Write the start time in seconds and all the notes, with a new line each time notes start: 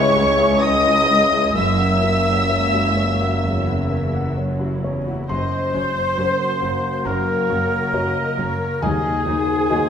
Already playing: C#2 G#2 C#3 G#3 C#4 E4 G#4 C#5 E5 G#5 C#6
0.15 G#3 E4 G#4
0.37 C#4 G#4 E5
0.59 G#3 E4 C#5 D#5 D#6
0.84 C#4 E4 G#4
1.06 G#3 E4 C#5
1.30 C#4 E4 G#4 E5
1.53 F#1 F#2 F#3 A#3 C#4 E5 E6
1.78 A#3 E4 F#5
2.02 F#3 C#4 A#4
2.26 A#3 E4 F#5
2.49 C#2 F#3 C#4 C#5 A#5
2.73 A#3 E4 F#4 F#5
2.97 F#3 C#4 C#5
3.21 A#3 E4 F#4 F#5
3.43 E2 C#3 F#3 C#4
3.67 A#3 E4 F#5
3.91 F#3 C#4 A#4
4.14 A#3 E4 F#5
4.37 F#2 F#3 C#4 C#5
4.60 A#3 E4 F#4 F#5
4.83 E2 F#3 C#4 C#5
5.06 A#3 E4 F#4 F#5
5.28 F#1 F#2 F#3 A#3 C#4 F#4 C5 D#5 C6
5.73 F#1 F#2 C#3 F#3 C#4 C#5
6.17 F#1 F#2 F#3 C#4 F#4 A#4 C5
6.61 F#1 F#2 F#3 C#4 A#4
7.04 F#1 F#2 F#3 C#4 A#4 C#5 A#5
7.48 F#1 F#2 C#3 F#3 C#4
7.93 F#1 F#2 F#3 C#4 F#4 A#4 C#5 D#5
8.37 F#1 F#2 F#3 C#4 C#5
8.81 D#2 D#3 F#3 A#3 D#4 F#4 G#4 D#5 G#5
9.25 D#2 F#3 D#4 C5
9.70 D#2 F#3 D#4 F#4 A#4 D#5